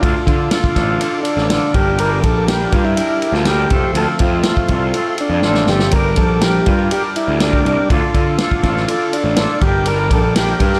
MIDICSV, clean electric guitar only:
0, 0, Header, 1, 2, 480
1, 0, Start_track
1, 0, Key_signature, -2, "minor"
1, 0, Tempo, 492207
1, 21, Time_signature, 4, 2, 24, 8
1, 10529, End_track
2, 0, Start_track
2, 0, Title_t, "Clean electric guitar"
2, 0, Program_c, 0, 27
2, 0, Note_on_c, 0, 50, 80
2, 16, Note_on_c, 0, 62, 92
2, 19, Note_on_c, 0, 65, 90
2, 27, Note_on_c, 0, 69, 92
2, 482, Note_off_c, 0, 50, 0
2, 494, Note_on_c, 0, 50, 64
2, 495, Note_off_c, 0, 65, 0
2, 497, Note_off_c, 0, 62, 0
2, 501, Note_on_c, 0, 62, 65
2, 503, Note_off_c, 0, 69, 0
2, 507, Note_on_c, 0, 65, 74
2, 514, Note_on_c, 0, 69, 70
2, 720, Note_off_c, 0, 69, 0
2, 732, Note_on_c, 0, 69, 70
2, 738, Note_off_c, 0, 65, 0
2, 750, Note_on_c, 0, 65, 65
2, 751, Note_off_c, 0, 62, 0
2, 763, Note_on_c, 0, 62, 61
2, 964, Note_off_c, 0, 50, 0
2, 970, Note_off_c, 0, 62, 0
2, 975, Note_on_c, 0, 50, 69
2, 979, Note_off_c, 0, 65, 0
2, 982, Note_on_c, 0, 62, 68
2, 988, Note_off_c, 0, 69, 0
2, 991, Note_on_c, 0, 65, 67
2, 1000, Note_on_c, 0, 69, 74
2, 1435, Note_off_c, 0, 50, 0
2, 1447, Note_on_c, 0, 50, 76
2, 1453, Note_off_c, 0, 62, 0
2, 1456, Note_off_c, 0, 65, 0
2, 1463, Note_off_c, 0, 69, 0
2, 1464, Note_on_c, 0, 62, 72
2, 1467, Note_on_c, 0, 65, 87
2, 1475, Note_on_c, 0, 69, 86
2, 1679, Note_off_c, 0, 50, 0
2, 1685, Note_off_c, 0, 69, 0
2, 1687, Note_off_c, 0, 62, 0
2, 1688, Note_on_c, 0, 70, 84
2, 1689, Note_off_c, 0, 65, 0
2, 1699, Note_on_c, 0, 67, 75
2, 1710, Note_on_c, 0, 62, 70
2, 1720, Note_on_c, 0, 55, 59
2, 1908, Note_off_c, 0, 55, 0
2, 1920, Note_on_c, 0, 55, 89
2, 1922, Note_off_c, 0, 62, 0
2, 1931, Note_off_c, 0, 67, 0
2, 1934, Note_on_c, 0, 62, 95
2, 1935, Note_off_c, 0, 70, 0
2, 1943, Note_on_c, 0, 67, 88
2, 1947, Note_on_c, 0, 70, 90
2, 2397, Note_off_c, 0, 55, 0
2, 2409, Note_on_c, 0, 55, 74
2, 2416, Note_off_c, 0, 62, 0
2, 2421, Note_off_c, 0, 67, 0
2, 2426, Note_off_c, 0, 70, 0
2, 2428, Note_on_c, 0, 62, 64
2, 2433, Note_on_c, 0, 67, 68
2, 2438, Note_on_c, 0, 70, 79
2, 2654, Note_off_c, 0, 70, 0
2, 2665, Note_on_c, 0, 70, 68
2, 2670, Note_off_c, 0, 67, 0
2, 2682, Note_on_c, 0, 67, 68
2, 2683, Note_off_c, 0, 62, 0
2, 2695, Note_on_c, 0, 62, 58
2, 2886, Note_off_c, 0, 55, 0
2, 2892, Note_off_c, 0, 62, 0
2, 2898, Note_on_c, 0, 55, 69
2, 2899, Note_off_c, 0, 67, 0
2, 2904, Note_on_c, 0, 62, 68
2, 2909, Note_off_c, 0, 70, 0
2, 2911, Note_on_c, 0, 67, 71
2, 2921, Note_on_c, 0, 70, 77
2, 3358, Note_off_c, 0, 55, 0
2, 3369, Note_on_c, 0, 55, 75
2, 3372, Note_off_c, 0, 62, 0
2, 3382, Note_off_c, 0, 67, 0
2, 3384, Note_on_c, 0, 62, 76
2, 3393, Note_off_c, 0, 70, 0
2, 3393, Note_on_c, 0, 67, 77
2, 3404, Note_on_c, 0, 70, 86
2, 3599, Note_off_c, 0, 55, 0
2, 3604, Note_off_c, 0, 70, 0
2, 3606, Note_off_c, 0, 62, 0
2, 3608, Note_off_c, 0, 67, 0
2, 3608, Note_on_c, 0, 69, 84
2, 3611, Note_on_c, 0, 65, 70
2, 3620, Note_on_c, 0, 60, 69
2, 3626, Note_on_c, 0, 57, 69
2, 3629, Note_on_c, 0, 53, 65
2, 3836, Note_off_c, 0, 53, 0
2, 3842, Note_off_c, 0, 57, 0
2, 3847, Note_on_c, 0, 53, 85
2, 3849, Note_off_c, 0, 60, 0
2, 3854, Note_on_c, 0, 57, 91
2, 3855, Note_off_c, 0, 65, 0
2, 3858, Note_off_c, 0, 69, 0
2, 3861, Note_on_c, 0, 60, 92
2, 3867, Note_on_c, 0, 65, 95
2, 3870, Note_on_c, 0, 69, 92
2, 4313, Note_off_c, 0, 57, 0
2, 4325, Note_off_c, 0, 60, 0
2, 4325, Note_on_c, 0, 57, 69
2, 4333, Note_off_c, 0, 65, 0
2, 4336, Note_off_c, 0, 69, 0
2, 4337, Note_on_c, 0, 60, 65
2, 4345, Note_on_c, 0, 65, 76
2, 4348, Note_on_c, 0, 69, 67
2, 4562, Note_off_c, 0, 69, 0
2, 4572, Note_off_c, 0, 53, 0
2, 4574, Note_on_c, 0, 69, 64
2, 4580, Note_off_c, 0, 65, 0
2, 4586, Note_off_c, 0, 60, 0
2, 4591, Note_on_c, 0, 65, 68
2, 4598, Note_on_c, 0, 60, 61
2, 4804, Note_off_c, 0, 57, 0
2, 4813, Note_off_c, 0, 60, 0
2, 4816, Note_on_c, 0, 57, 65
2, 4818, Note_off_c, 0, 65, 0
2, 4825, Note_on_c, 0, 60, 69
2, 4830, Note_on_c, 0, 65, 66
2, 4831, Note_off_c, 0, 69, 0
2, 4843, Note_on_c, 0, 69, 75
2, 5290, Note_off_c, 0, 60, 0
2, 5292, Note_off_c, 0, 57, 0
2, 5292, Note_on_c, 0, 53, 77
2, 5298, Note_off_c, 0, 65, 0
2, 5302, Note_on_c, 0, 60, 86
2, 5303, Note_on_c, 0, 57, 76
2, 5305, Note_off_c, 0, 69, 0
2, 5310, Note_on_c, 0, 65, 82
2, 5316, Note_on_c, 0, 69, 87
2, 5526, Note_off_c, 0, 69, 0
2, 5538, Note_on_c, 0, 69, 59
2, 5540, Note_off_c, 0, 65, 0
2, 5552, Note_on_c, 0, 65, 56
2, 5557, Note_off_c, 0, 60, 0
2, 5569, Note_on_c, 0, 60, 55
2, 5761, Note_off_c, 0, 53, 0
2, 5763, Note_off_c, 0, 69, 0
2, 5766, Note_off_c, 0, 57, 0
2, 5771, Note_off_c, 0, 65, 0
2, 5779, Note_off_c, 0, 60, 0
2, 5785, Note_on_c, 0, 55, 85
2, 5798, Note_on_c, 0, 62, 87
2, 5812, Note_on_c, 0, 67, 85
2, 5815, Note_on_c, 0, 70, 85
2, 6241, Note_off_c, 0, 55, 0
2, 6253, Note_on_c, 0, 55, 68
2, 6263, Note_off_c, 0, 62, 0
2, 6266, Note_off_c, 0, 67, 0
2, 6267, Note_on_c, 0, 62, 67
2, 6271, Note_off_c, 0, 70, 0
2, 6278, Note_on_c, 0, 67, 68
2, 6283, Note_on_c, 0, 70, 77
2, 6485, Note_off_c, 0, 70, 0
2, 6496, Note_on_c, 0, 70, 70
2, 6502, Note_off_c, 0, 67, 0
2, 6513, Note_on_c, 0, 67, 59
2, 6521, Note_off_c, 0, 62, 0
2, 6525, Note_on_c, 0, 62, 55
2, 6727, Note_off_c, 0, 55, 0
2, 6739, Note_on_c, 0, 55, 74
2, 6743, Note_off_c, 0, 62, 0
2, 6747, Note_on_c, 0, 62, 70
2, 6751, Note_off_c, 0, 67, 0
2, 6754, Note_off_c, 0, 70, 0
2, 6762, Note_on_c, 0, 67, 67
2, 6766, Note_on_c, 0, 70, 73
2, 7207, Note_off_c, 0, 55, 0
2, 7218, Note_on_c, 0, 55, 78
2, 7221, Note_off_c, 0, 62, 0
2, 7224, Note_off_c, 0, 67, 0
2, 7225, Note_on_c, 0, 62, 78
2, 7227, Note_off_c, 0, 70, 0
2, 7236, Note_on_c, 0, 67, 86
2, 7238, Note_on_c, 0, 70, 87
2, 7435, Note_off_c, 0, 70, 0
2, 7447, Note_on_c, 0, 70, 64
2, 7453, Note_off_c, 0, 67, 0
2, 7465, Note_on_c, 0, 67, 58
2, 7473, Note_off_c, 0, 62, 0
2, 7476, Note_on_c, 0, 62, 51
2, 7678, Note_off_c, 0, 70, 0
2, 7684, Note_off_c, 0, 55, 0
2, 7687, Note_off_c, 0, 67, 0
2, 7694, Note_on_c, 0, 50, 82
2, 7704, Note_off_c, 0, 62, 0
2, 7708, Note_on_c, 0, 62, 80
2, 7714, Note_on_c, 0, 65, 90
2, 7727, Note_on_c, 0, 69, 94
2, 8156, Note_off_c, 0, 50, 0
2, 8168, Note_on_c, 0, 50, 70
2, 8175, Note_off_c, 0, 62, 0
2, 8175, Note_off_c, 0, 65, 0
2, 8179, Note_on_c, 0, 62, 72
2, 8187, Note_off_c, 0, 69, 0
2, 8187, Note_on_c, 0, 65, 77
2, 8199, Note_on_c, 0, 69, 70
2, 8395, Note_off_c, 0, 69, 0
2, 8405, Note_off_c, 0, 65, 0
2, 8406, Note_on_c, 0, 69, 69
2, 8416, Note_on_c, 0, 65, 66
2, 8418, Note_off_c, 0, 62, 0
2, 8430, Note_on_c, 0, 62, 54
2, 8632, Note_off_c, 0, 50, 0
2, 8643, Note_off_c, 0, 62, 0
2, 8644, Note_on_c, 0, 50, 72
2, 8651, Note_off_c, 0, 65, 0
2, 8655, Note_on_c, 0, 62, 67
2, 8657, Note_off_c, 0, 69, 0
2, 8663, Note_on_c, 0, 65, 72
2, 8669, Note_on_c, 0, 69, 80
2, 9118, Note_off_c, 0, 50, 0
2, 9127, Note_off_c, 0, 62, 0
2, 9129, Note_on_c, 0, 50, 79
2, 9136, Note_off_c, 0, 65, 0
2, 9139, Note_on_c, 0, 62, 78
2, 9144, Note_off_c, 0, 69, 0
2, 9148, Note_on_c, 0, 65, 82
2, 9155, Note_on_c, 0, 69, 92
2, 9360, Note_off_c, 0, 50, 0
2, 9365, Note_off_c, 0, 62, 0
2, 9368, Note_off_c, 0, 69, 0
2, 9369, Note_off_c, 0, 65, 0
2, 9372, Note_on_c, 0, 70, 82
2, 9378, Note_on_c, 0, 67, 82
2, 9392, Note_on_c, 0, 62, 68
2, 9398, Note_on_c, 0, 55, 66
2, 9597, Note_off_c, 0, 55, 0
2, 9608, Note_off_c, 0, 62, 0
2, 9608, Note_on_c, 0, 55, 86
2, 9617, Note_off_c, 0, 67, 0
2, 9620, Note_on_c, 0, 62, 96
2, 9627, Note_off_c, 0, 70, 0
2, 9628, Note_on_c, 0, 67, 83
2, 9639, Note_on_c, 0, 70, 94
2, 10082, Note_off_c, 0, 55, 0
2, 10091, Note_off_c, 0, 62, 0
2, 10093, Note_on_c, 0, 55, 64
2, 10102, Note_off_c, 0, 67, 0
2, 10103, Note_on_c, 0, 62, 73
2, 10113, Note_on_c, 0, 67, 71
2, 10114, Note_off_c, 0, 70, 0
2, 10125, Note_on_c, 0, 70, 80
2, 10319, Note_off_c, 0, 70, 0
2, 10331, Note_off_c, 0, 67, 0
2, 10331, Note_on_c, 0, 70, 66
2, 10343, Note_on_c, 0, 67, 60
2, 10346, Note_off_c, 0, 62, 0
2, 10357, Note_on_c, 0, 62, 59
2, 10529, Note_off_c, 0, 55, 0
2, 10529, Note_off_c, 0, 62, 0
2, 10529, Note_off_c, 0, 67, 0
2, 10529, Note_off_c, 0, 70, 0
2, 10529, End_track
0, 0, End_of_file